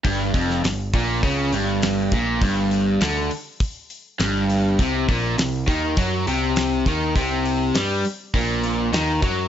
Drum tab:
HH |o-o-o-o-o-o-o-o-|o-o-o-o-o-o-o-o-|o-o-o-o-o-o-o-o-|o-o-o-o-o-o-o-o-|
SD |---oo-------o---|----o-------o---|----o-------o---|----o-------o---|
BD |o-o---o-o-----o-|o-------o-------|o-o---o-o-----o-|o-------o-----o-|